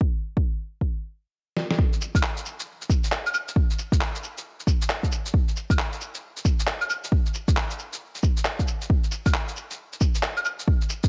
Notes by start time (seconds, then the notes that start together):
0.01 kick
0.37 kick
0.81 kick
1.57 snare
1.71 snare
1.79 kick
1.93 shaker
2.01 cabasa
2.15 kick, claves, shaker
2.23 clap
2.37 shaker
2.46 cabasa
2.60 shaker
2.81 shaker
2.90 kick, cabasa
3.04 cabasa, shaker
3.12 clap
3.26 claves, shaker
3.34 cabasa, claves
3.48 shaker
3.56 kick
3.70 shaker
3.79 cabasa
3.92 kick, shaker
4.01 clap
4.15 cabasa, shaker
4.24 cabasa
4.38 shaker
4.60 shaker
4.67 kick, cabasa
4.82 shaker
4.90 clap
5.03 kick, shaker
5.12 cabasa
5.26 shaker
5.34 kick
5.48 shaker
5.56 cabasa
5.70 kick, claves, shaker
5.79 clap
5.93 shaker
6.01 cabasa
6.14 shaker
6.37 shaker
6.45 kick, cabasa
6.59 cabasa, shaker
6.67 clap
6.81 claves, shaker
6.90 cabasa, claves
7.04 shaker
7.12 kick
7.26 shaker
7.34 cabasa
7.48 kick, shaker
7.57 clap
7.70 cabasa, shaker
7.79 cabasa
7.93 shaker
8.15 shaker
8.23 kick, cabasa
8.37 shaker
8.45 clap
8.59 kick, shaker
8.68 cabasa
8.81 shaker
8.90 kick
9.04 shaker
9.12 cabasa
9.26 kick, claves, shaker
9.34 clap
9.48 shaker
9.56 cabasa
9.70 shaker
9.93 shaker
10.01 kick, cabasa
10.15 cabasa, shaker
10.23 clap
10.37 claves, shaker
10.45 cabasa, claves
10.59 shaker
10.68 kick
10.81 shaker
10.89 cabasa
11.03 kick, shaker